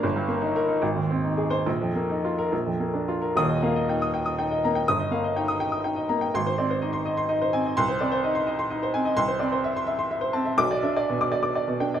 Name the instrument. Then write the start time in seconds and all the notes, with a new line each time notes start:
upright piano
0.03 G1
0.16 G2
0.28 A#3
0.42 D#4
0.56 A#4
0.68 D#4
0.82 G#1
0.96 D#2
1.10 C4
1.24 D#4
1.37 G#4
1.50 C5
1.67 A#1
1.82 F2
1.95 A#3
2.10 D#4
2.25 F4
2.38 A#4
2.52 A#1
2.67 F2
2.80 A#3
2.94 D4
3.08 F4
3.22 A#4
3.36 D#1 D#2 D#6
3.49 D#5
3.62 A#3 F5
3.76 D#5
3.89 D#4 G5
4.02 D#6
4.14 G5
4.26 D#6
4.39 D#4 G5
4.51 D#5
4.65 A#3 A#5
4.75 G5
4.88 G1 D#6
5.00 D#5
5.11 A#3 F5
5.24 D#5
5.36 D#4 G5
5.48 D#6
5.60 G5
5.72 D#6
5.84 D#4 G5
5.96 D#5
6.09 A#3 A#5
6.21 G5
6.34 G#1 C6
6.46 C5
6.58 C4 D5
6.70 C5
6.82 D#4 D#5
6.93 C6
7.06 D#5
7.17 C6
7.29 D#4 D#5
7.42 C5
7.53 C4 G#5
7.66 D#5
7.77 C2 C6
7.88 C5
8.00 C4 D5
8.12 C5
8.24 D#4 D#5
8.35 C6
8.47 D#5
8.59 C6
8.70 D#4 D#5
8.83 C5
8.94 C4 G#5
9.05 D#5
9.17 C2 C6
9.28 C5
9.39 C4 D5
9.52 C5
9.64 E5
9.77 C6
9.87 E5
9.99 C6
10.11 E5
10.21 C5
10.33 C4 A5
10.45 E5
10.58 B1 D6
10.71 D5
10.83 D4 E5
10.96 D5
11.09 B2
11.21 D6
11.32 D5
11.43 D6
11.55 D5
11.68 B2
11.80 D4 G5
11.94 D5